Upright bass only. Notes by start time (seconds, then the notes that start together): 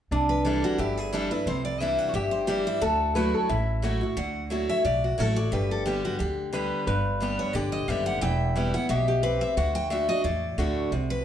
0.11 C2
0.78 G1
1.46 C2
2.14 G1
2.82 D2
3.49 A1
4.16 D2
4.85 B1
5.18 A1
5.52 G1
6.20 D2
6.87 G1
7.54 G1
7.88 F#1
8.22 E1
8.90 B1
9.57 D2
10.24 E2
10.58 D2
10.91 C2